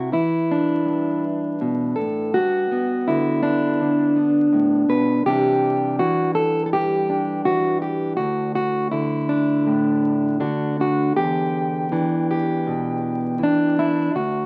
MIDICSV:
0, 0, Header, 1, 2, 480
1, 0, Start_track
1, 0, Tempo, 731707
1, 1539, Time_signature, 4, 2, 24, 8
1, 5846, Tempo, 751880
1, 7766, Tempo, 738007
1, 9418, End_track
2, 0, Start_track
2, 0, Title_t, "Steel-string acoustic guitar"
2, 0, Program_c, 0, 25
2, 0, Note_on_c, 0, 48, 60
2, 0, Note_on_c, 0, 64, 37
2, 0, Note_on_c, 0, 66, 74
2, 79, Note_off_c, 0, 64, 0
2, 80, Note_off_c, 0, 48, 0
2, 81, Note_on_c, 0, 52, 54
2, 85, Note_off_c, 0, 66, 0
2, 87, Note_on_c, 0, 64, 71
2, 337, Note_on_c, 0, 62, 72
2, 559, Note_on_c, 0, 43, 55
2, 814, Note_off_c, 0, 64, 0
2, 1058, Note_on_c, 0, 47, 52
2, 1284, Note_on_c, 0, 69, 80
2, 1299, Note_off_c, 0, 47, 0
2, 1301, Note_on_c, 0, 45, 51
2, 1503, Note_off_c, 0, 43, 0
2, 1507, Note_off_c, 0, 52, 0
2, 1532, Note_off_c, 0, 69, 0
2, 1533, Note_off_c, 0, 62, 0
2, 1535, Note_on_c, 0, 66, 83
2, 1541, Note_off_c, 0, 45, 0
2, 1548, Note_on_c, 0, 43, 63
2, 1781, Note_on_c, 0, 59, 39
2, 2018, Note_on_c, 0, 64, 75
2, 2025, Note_on_c, 0, 50, 53
2, 2245, Note_off_c, 0, 66, 0
2, 2248, Note_on_c, 0, 62, 86
2, 2492, Note_off_c, 0, 50, 0
2, 2500, Note_on_c, 0, 50, 58
2, 2722, Note_off_c, 0, 59, 0
2, 2730, Note_on_c, 0, 59, 40
2, 2736, Note_off_c, 0, 64, 0
2, 2967, Note_off_c, 0, 50, 0
2, 2970, Note_on_c, 0, 45, 54
2, 3203, Note_off_c, 0, 45, 0
2, 3205, Note_on_c, 0, 47, 53
2, 3212, Note_on_c, 0, 71, 86
2, 3423, Note_off_c, 0, 59, 0
2, 3431, Note_off_c, 0, 43, 0
2, 3447, Note_off_c, 0, 47, 0
2, 3448, Note_off_c, 0, 62, 0
2, 3449, Note_off_c, 0, 71, 0
2, 3450, Note_on_c, 0, 48, 64
2, 3451, Note_on_c, 0, 52, 42
2, 3452, Note_on_c, 0, 67, 84
2, 3458, Note_on_c, 0, 55, 45
2, 3465, Note_on_c, 0, 62, 43
2, 3926, Note_off_c, 0, 52, 0
2, 3928, Note_off_c, 0, 67, 0
2, 3929, Note_off_c, 0, 48, 0
2, 3931, Note_on_c, 0, 66, 80
2, 3934, Note_on_c, 0, 52, 57
2, 4163, Note_off_c, 0, 66, 0
2, 4165, Note_on_c, 0, 69, 83
2, 4360, Note_off_c, 0, 69, 0
2, 4369, Note_on_c, 0, 69, 64
2, 4411, Note_off_c, 0, 69, 0
2, 4415, Note_on_c, 0, 67, 90
2, 4418, Note_on_c, 0, 43, 58
2, 4653, Note_off_c, 0, 62, 0
2, 4655, Note_on_c, 0, 62, 41
2, 4881, Note_off_c, 0, 52, 0
2, 4886, Note_off_c, 0, 67, 0
2, 4889, Note_on_c, 0, 52, 60
2, 4889, Note_on_c, 0, 66, 78
2, 5126, Note_off_c, 0, 66, 0
2, 5129, Note_on_c, 0, 67, 74
2, 5339, Note_off_c, 0, 52, 0
2, 5342, Note_off_c, 0, 43, 0
2, 5355, Note_off_c, 0, 67, 0
2, 5358, Note_on_c, 0, 66, 80
2, 5367, Note_off_c, 0, 55, 0
2, 5368, Note_on_c, 0, 38, 60
2, 5604, Note_off_c, 0, 66, 0
2, 5611, Note_on_c, 0, 66, 78
2, 5845, Note_off_c, 0, 66, 0
2, 5848, Note_on_c, 0, 64, 76
2, 5856, Note_on_c, 0, 50, 54
2, 5867, Note_off_c, 0, 62, 0
2, 6088, Note_on_c, 0, 62, 65
2, 6329, Note_on_c, 0, 45, 52
2, 6788, Note_off_c, 0, 50, 0
2, 6790, Note_off_c, 0, 62, 0
2, 6795, Note_on_c, 0, 50, 55
2, 6797, Note_off_c, 0, 64, 0
2, 6799, Note_on_c, 0, 62, 70
2, 6800, Note_on_c, 0, 66, 40
2, 6810, Note_off_c, 0, 45, 0
2, 7043, Note_off_c, 0, 62, 0
2, 7050, Note_off_c, 0, 66, 0
2, 7051, Note_on_c, 0, 62, 37
2, 7058, Note_on_c, 0, 66, 72
2, 7264, Note_off_c, 0, 62, 0
2, 7281, Note_off_c, 0, 38, 0
2, 7282, Note_off_c, 0, 66, 0
2, 7284, Note_on_c, 0, 40, 68
2, 7284, Note_on_c, 0, 67, 77
2, 7763, Note_off_c, 0, 50, 0
2, 7766, Note_on_c, 0, 52, 58
2, 7769, Note_on_c, 0, 62, 43
2, 8007, Note_off_c, 0, 67, 0
2, 8018, Note_on_c, 0, 67, 83
2, 8254, Note_on_c, 0, 47, 57
2, 8714, Note_off_c, 0, 52, 0
2, 8722, Note_on_c, 0, 52, 62
2, 8732, Note_off_c, 0, 47, 0
2, 8742, Note_off_c, 0, 62, 0
2, 8750, Note_on_c, 0, 62, 73
2, 8973, Note_off_c, 0, 67, 0
2, 8982, Note_on_c, 0, 64, 77
2, 9177, Note_off_c, 0, 52, 0
2, 9178, Note_off_c, 0, 40, 0
2, 9216, Note_off_c, 0, 64, 0
2, 9217, Note_on_c, 0, 38, 67
2, 9220, Note_off_c, 0, 62, 0
2, 9222, Note_on_c, 0, 66, 76
2, 9418, Note_off_c, 0, 38, 0
2, 9418, Note_off_c, 0, 66, 0
2, 9418, End_track
0, 0, End_of_file